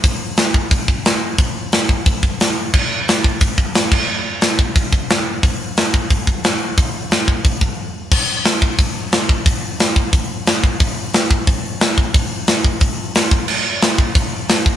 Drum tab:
CC |--------|--------|x------x|--------|
HH |o-o-o-o-|o-o-o-o-|--o-o-o-|--o-o-o-|
SD |--o---o-|--o---o-|--o---o-|--o---o-|
BD |o--ooo--|o--ooo--|o--ooo-o|---ooo--|

CC |--------|--------|x-------|--------|
HH |o-o-o-o-|o-o-o---|--o-o-o-|o-o-o-o-|
SD |--o---o-|--o-----|--o---o-|--o---o-|
BD |o--ooo--|o--ooo--|o--oo--o|o--oo--o|

CC |--------|--------|x-------|
HH |o-o-o-o-|o-o-o-o-|--o-o-o-|
SD |--o---o-|--o---o-|--o---o-|
BD |o--oo--o|o--oo--o|---oo--o|